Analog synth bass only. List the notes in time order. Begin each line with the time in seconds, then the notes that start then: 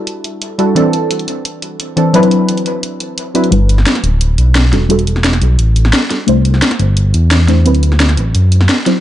3.52 G1
4.04 D1
4.38 B1
4.73 E1
5.42 B1
5.59 A1
6.28 C2
6.80 G1
7.14 E2
7.66 D2
8.17 A1
8.35 F#2